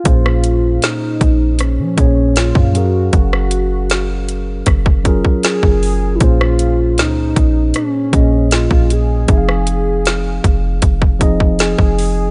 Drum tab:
HH |x-x-x-x-x-x-x-x-|x-x-x-x-x-x-x-o-|x-x-x-x-x-x-x-x-|x-x-x-x-x-x-x-o-|
SD |-r--o---r---o---|-r--o---r---o---|-r--o---r---o---|-r--o-------o---|
BD |o-----o---o--o--|o-------oooo-o--|o-----o---o--o--|o-----o-oooo-o--|